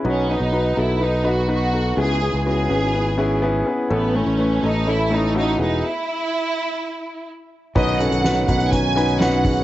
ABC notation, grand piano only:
X:1
M:4/4
L:1/8
Q:1/4=124
K:Bmix
V:1 name="Grand piano"
[B,DFB] [B,DFB] [B,DFB] [B,DFA] [B,DFB] [B,DFB] [B,DFB] [B,DFA] | [B,CEG] [B,CEG] [B,CEF] [B,CEB] [B,CEG] [B,CEGe] [B,CEGf] [B,CEBg] | [A,CEA] [A,CEA] [A,CEB] [A,CEA] [A,CEA] [A,CEA] [A,CEF] [B,EFG] | z8 |
[CDFB] [CDFA] [CDFB] [CDFB] [CDFB] [CDFB] [CDFB] [CDFG] |]
V:2 name="Grand piano" clef=bass
B,,3 z4 z | C,3 z4 z | A,,3 z4 z | z8 |
B,,3 z4 z |]